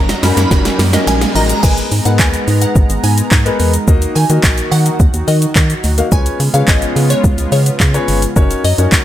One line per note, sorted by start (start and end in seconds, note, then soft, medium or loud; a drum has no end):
0.00 0.13 F#1 loud
0.00 1.61 F#3 medium
0.00 1.61 C#4 medium
0.00 1.61 D#4 medium
0.00 1.61 A#4 medium
0.00 0.24 A#5 medium
0.00 riser medium
0.09 0.17 D#5 loud
0.09 snare loud
0.09 closed hi-hat medium
0.09 shaker medium
0.23 0.32 F#2 loud
0.23 0.39 C#4 medium
0.23 0.31 C#4 medium
0.23 0.40 D#4 medium
0.23 0.40 F#4 medium
0.23 0.40 A#4 medium
0.23 0.49 B5 loud
0.23 snare loud
0.23 open hi-hat medium
0.23 shaker soft
0.37 0.46 F#2 loud
0.37 0.45 A#3 medium
0.37 snare loud
0.37 closed hi-hat medium
0.37 shaker medium
0.51 0.69 F#1 loud
0.51 0.76 C#4 medium
0.51 0.76 D#4 medium
0.51 0.76 F#4 medium
0.51 0.76 A#4 medium
0.51 0.59 D#5 loud
0.51 kick loud
0.51 snare loud
0.51 shaker medium
0.65 0.73 C#4 medium
0.65 snare loud
0.65 closed hi-hat medium
0.65 shaker medium
0.79 0.97 F#2 loud
0.79 0.87 A#3 medium
0.79 snare loud
0.79 open hi-hat medium
0.79 shaker medium
0.93 1.18 C#4 medium
0.93 1.18 D#4 medium
0.93 1.18 F#4 medium
0.93 1.18 A#4 medium
0.93 1.01 D#5 loud
0.93 snare loud
0.93 closed hi-hat medium
0.93 shaker medium
1.07 1.25 A#1 loud
1.07 1.15 C#4 medium
1.07 1.36 G#5 medium
1.07 snare loud
1.07 shaker medium
1.21 1.29 A#3 medium
1.21 snare loud
1.21 closed hi-hat medium
1.21 shaker medium
1.35 1.53 A1 medium
1.35 1.52 C#4 medium
1.35 1.52 D#4 medium
1.35 1.52 F#4 medium
1.35 1.52 A#4 medium
1.35 1.43 D#5 loud
1.35 1.61 A#5 loud
1.35 open hi-hat medium
1.35 shaker soft
1.49 closed hi-hat medium
1.49 shaker medium
1.63 1.82 G#1 loud
1.63 3.85 G#3 medium
1.63 3.85 B3 medium
1.63 1.88 B3 medium
1.63 6.08 D#4 medium
1.63 1.88 D#4 medium
1.63 1.88 G#4 medium
1.63 1.88 A#4 medium
1.63 1.88 B4 medium
1.63 1.73 G#5 loud
1.63 6.08 A#5 medium
1.63 kick loud
1.63 crash loud
1.63 shaker medium
1.78 closed hi-hat medium
1.78 shaker medium
1.92 2.01 G#2 loud
1.92 open hi-hat medium
1.92 shaker medium
2.05 2.21 G#2 loud
2.05 2.72 B3 medium
2.05 2.72 D#4 medium
2.05 2.72 G#4 medium
2.05 2.72 A#4 medium
2.05 2.72 B4 medium
2.05 2.16 F#5 medium
2.05 closed hi-hat medium
2.05 shaker medium
2.19 2.37 D#2 medium
2.19 2.30 G#5 medium
2.19 kick loud
2.19 clap loud
2.19 shaker medium
2.34 closed hi-hat medium
2.34 shaker medium
2.48 2.66 G#2 loud
2.48 open hi-hat medium
2.48 shaker soft
2.62 2.72 F#5 medium
2.62 closed hi-hat medium
2.62 shaker medium
2.76 2.85 G#1 loud
2.76 kick loud
2.76 shaker medium
2.90 2.99 G#1 loud
2.90 closed hi-hat medium
2.90 shaker medium
3.04 3.22 G#2 loud
3.04 3.24 G#5 medium
3.04 open hi-hat medium
3.04 shaker medium
3.18 closed hi-hat medium
3.18 shaker medium
3.32 3.50 G#2 loud
3.32 kick loud
3.32 clap loud
3.32 shaker medium
3.45 3.70 B3 loud
3.45 3.70 D#4 medium
3.45 3.71 G#4 medium
3.45 3.71 A#4 medium
3.45 3.71 B4 loud
3.45 closed hi-hat medium
3.45 shaker medium
3.60 3.78 E2 medium
3.60 open hi-hat medium
3.60 shaker medium
3.73 closed hi-hat medium
3.73 shaker medium
3.87 4.06 D#2 loud
3.87 6.10 D#3 medium
3.87 4.12 A#3 medium
3.87 4.13 D#4 medium
3.87 6.10 F#4 medium
3.87 4.13 F#4 medium
3.87 4.13 A#4 medium
3.87 4.13 D#5 loud
3.87 kick loud
3.87 shaker medium
4.02 closed hi-hat medium
4.02 shaker medium
4.15 4.25 D#3 loud
4.15 4.26 G#5 medium
4.15 open hi-hat medium
4.15 shaker medium
4.30 4.39 D#3 loud
4.30 4.96 A#3 medium
4.30 4.96 D#4 medium
4.30 4.96 F#4 medium
4.30 4.96 A#4 medium
4.30 4.96 D#5 medium
4.30 closed hi-hat medium
4.30 shaker medium
4.43 4.62 A#1 loud
4.43 kick loud
4.43 clap loud
4.43 shaker medium
4.58 closed hi-hat medium
4.58 shaker medium
4.72 4.90 D#3 loud
4.72 4.82 F#5 medium
4.72 open hi-hat medium
4.72 shaker soft
4.86 closed hi-hat medium
4.86 shaker medium
5.00 5.09 D#2 loud
5.00 kick loud
5.00 shaker medium
5.14 5.23 D#2 medium
5.14 closed hi-hat medium
5.14 shaker medium
5.28 5.46 D#3 loud
5.28 5.67 D#5 medium
5.28 open hi-hat medium
5.28 shaker medium
5.42 closed hi-hat medium
5.42 shaker medium
5.56 5.74 D#3 loud
5.56 kick loud
5.56 clap loud
5.56 shaker medium
5.70 closed hi-hat medium
5.70 shaker medium
5.84 6.02 D2 medium
5.84 open hi-hat medium
5.84 shaker medium
5.98 6.06 A#3 medium
5.98 6.06 D#4 medium
5.98 6.06 F#4 medium
5.98 6.06 A#4 medium
5.98 6.06 F5 medium
5.98 closed hi-hat medium
5.98 shaker medium
6.12 6.30 C#2 loud
6.12 8.34 C#3 medium
6.12 8.34 G#3 medium
6.12 8.34 B3 medium
6.12 6.37 C#4 medium
6.12 8.34 F4 medium
6.12 6.37 F4 medium
6.12 6.37 G#4 medium
6.12 6.37 B4 medium
6.12 6.37 C#5 medium
6.12 6.22 G#5 loud
6.12 kick loud
6.12 shaker medium
6.26 closed hi-hat medium
6.26 shaker medium
6.40 6.49 C#3 loud
6.40 open hi-hat medium
6.40 shaker medium
6.54 6.63 C#3 loud
6.54 7.20 C#4 medium
6.54 7.20 F4 medium
6.54 7.21 G#4 medium
6.54 7.21 B4 medium
6.54 7.21 C#5 medium
6.54 6.64 F5 medium
6.54 closed hi-hat medium
6.54 shaker medium
6.68 6.86 G#1 medium
6.68 6.78 D#5 medium
6.68 kick loud
6.68 clap loud
6.68 shaker medium
6.82 closed hi-hat medium
6.82 shaker medium
6.96 7.14 C#3 loud
6.96 open hi-hat medium
6.96 shaker soft
7.10 7.20 C#5 medium
7.10 closed hi-hat medium
7.10 shaker medium
7.24 7.33 C#2 loud
7.24 kick loud
7.24 shaker medium
7.38 7.47 C#2 loud
7.38 closed hi-hat medium
7.38 shaker medium
7.52 7.70 C#3 loud
7.52 7.73 C#5 medium
7.52 open hi-hat medium
7.52 shaker medium
7.66 closed hi-hat medium
7.66 shaker medium
7.80 7.98 C#3 loud
7.80 kick loud
7.80 clap loud
7.80 shaker medium
7.94 8.19 C#4 medium
7.94 8.19 F4 medium
7.94 8.19 G#4 medium
7.94 8.19 B4 medium
7.94 8.19 C#5 loud
7.94 closed hi-hat medium
7.94 shaker medium
8.08 8.27 G1 medium
8.08 open hi-hat medium
8.08 shaker medium
8.22 closed hi-hat medium
8.22 shaker medium
8.36 8.55 F#1 loud
8.36 9.04 F#3 medium
8.36 8.61 C#4 loud
8.36 9.04 C#4 medium
8.36 8.61 D#4 medium
8.36 9.04 D#4 medium
8.36 8.61 F#4 medium
8.36 8.61 A#4 medium
8.36 8.61 C#5 loud
8.36 9.04 A#5 loud
8.36 kick loud
8.36 shaker medium
8.51 closed hi-hat medium
8.51 shaker medium
8.64 8.73 F#2 loud
8.64 8.75 D#5 medium
8.64 open hi-hat medium
8.64 shaker medium
8.78 8.87 F#2 loud
8.78 9.04 C#4 medium
8.78 9.04 D#4 medium
8.78 9.04 F#4 medium
8.78 9.04 A#4 medium
8.78 9.04 C#5 medium
8.78 closed hi-hat medium
8.78 shaker medium
8.92 9.04 C#2 medium
8.92 kick loud
8.92 clap loud
8.92 shaker medium